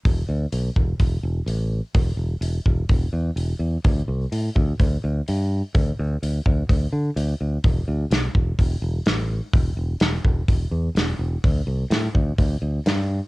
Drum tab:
HH |o-o-o-o-|o-o-o-o-|o-o-o-o-|o-o-o-o-|
SD |--------|--------|--------|--------|
BD |o--oo---|o--oo---|o--oo---|o--oo---|

HH |o-o-o-o-|o-o-o-o-|o-o-o-o-|
SD |--o---o-|--o---o-|--o---o-|
BD |o--oo---|o--oo---|o--oo---|